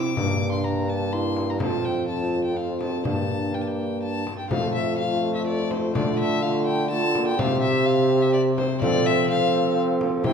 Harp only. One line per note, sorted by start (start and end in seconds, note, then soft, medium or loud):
0.00 0.20 C3 medium
0.00 0.18 E4 soft
0.00 0.19 C5 soft
0.15 1.63 G2 medium
0.15 1.62 D4 soft
0.15 1.62 A#4 soft
1.57 3.08 F2 soft
1.57 3.06 A3 soft
1.57 3.06 F4 soft
1.57 3.07 C5 soft
3.03 4.54 G2 soft
3.03 3.50 A#3 soft
3.03 3.51 D4 soft
3.03 3.53 G4 soft
3.51 4.52 A#3 soft
3.51 4.53 D4 soft
3.51 4.53 G4 soft
4.47 5.97 F2 medium
4.47 5.95 C4 medium
4.47 5.92 F4 medium
4.47 5.93 A4 soft
5.92 7.41 D3 medium
5.92 7.39 D4 medium
5.92 7.40 F4 medium
5.92 7.41 A4 soft
7.38 8.84 C3 medium
7.38 8.83 G4 medium
7.38 8.81 C5 medium
8.80 10.28 F3 medium
8.80 9.26 A3 medium
8.80 9.27 F4 medium
8.80 9.28 C5 medium
9.27 10.26 A3 medium
9.27 10.26 F4 medium
9.27 10.23 C5 medium
10.23 10.33 C3 medium
10.23 10.33 E4 medium
10.23 10.33 C5 medium